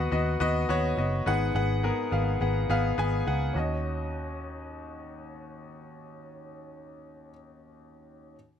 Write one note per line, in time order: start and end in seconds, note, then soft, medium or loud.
0.00 1.28 D#3 medium
0.00 0.11 B3 medium
0.00 0.12 F#4 medium
0.00 0.12 D#5 medium
0.00 1.27 F#5 medium
0.11 0.36 D#2 medium
0.11 0.38 B3 medium
0.11 0.38 F#4 medium
0.11 0.38 D#5 medium
0.40 0.64 D#2 medium
0.40 0.67 B3 loud
0.40 0.67 F#4 medium
0.40 0.67 D#5 loud
0.69 0.93 D#2 medium
0.69 0.95 B3 medium
0.69 0.96 F#4 medium
0.69 0.96 C#5 loud
0.97 1.21 F#1 medium
0.97 1.24 B3 medium
0.97 1.24 F#4 medium
0.97 1.24 D#5 medium
1.26 1.50 G#1 medium
1.26 2.08 G#2 medium
1.26 1.53 B3 medium
1.26 1.53 G#4 medium
1.26 1.53 F#5 medium
1.55 1.90 G#1 medium
1.55 1.81 B3 medium
1.55 1.81 G#4 medium
1.55 1.82 F#5 medium
1.83 2.10 B3 medium
1.83 2.10 G#4 medium
1.83 2.10 A#4 medium
2.11 2.36 G#1 medium
2.11 2.38 B3 medium
2.11 2.38 G#4 medium
2.11 2.39 F5 medium
2.41 2.64 G#1 medium
2.41 2.67 B3 medium
2.41 2.67 G#4 medium
2.41 2.68 F#5 medium
2.69 2.93 G#1 medium
2.69 2.96 B3 medium
2.69 2.96 G#4 medium
2.69 2.96 F5 medium
2.98 3.21 G#1 medium
2.98 3.24 B3 medium
2.98 3.25 G#4 medium
2.98 3.25 G#5 medium
3.27 3.50 C#2 medium
3.27 3.53 B3 medium
3.27 3.53 G#4 medium
3.27 3.53 F#5 medium
3.53 7.30 D#2 medium
3.53 7.29 C#4 medium
3.53 7.30 F#4 medium
3.53 7.31 D#5 medium